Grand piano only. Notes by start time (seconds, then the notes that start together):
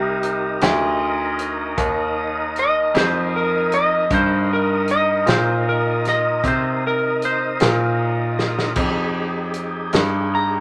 Already playing: C2
0.62 D2
1.78 D#2
2.94 F2
4.11 G2
5.26 A#2
6.44 C3
7.61 A#2
8.76 F2
9.93 G2